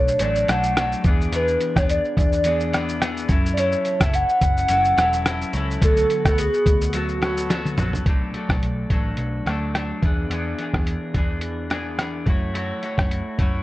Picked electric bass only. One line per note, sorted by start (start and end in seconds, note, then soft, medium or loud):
0.00 0.15 B1 loud
0.20 0.43 A1 loud
0.49 0.94 B1 medium
1.05 1.27 E2 loud
1.33 1.55 E2 loud
1.76 1.99 E2 medium
2.17 3.25 E2 loud
3.29 3.74 F#2 medium
4.01 4.23 F#1 loud
4.42 4.64 F#1 loud
4.70 4.92 F#1 loud
4.98 5.43 E1 medium
5.54 5.76 C#2 medium
5.82 6.04 D2 loud
6.25 6.48 D2 loud
6.66 7.74 D2 loud
7.78 8.00 A#1 medium
8.06 8.28 B1 medium
8.49 8.59 B1 medium
8.62 8.84 B1 medium
8.90 9.12 A1 medium
9.17 9.40 B1 medium
9.45 9.91 D2 medium
10.02 10.25 E2 medium
10.30 10.53 E2 medium
10.74 10.96 E2 medium
11.14 12.23 E2 medium
12.26 12.71 F#2 medium
12.98 13.21 F#2 medium
13.39 13.61 F#2 medium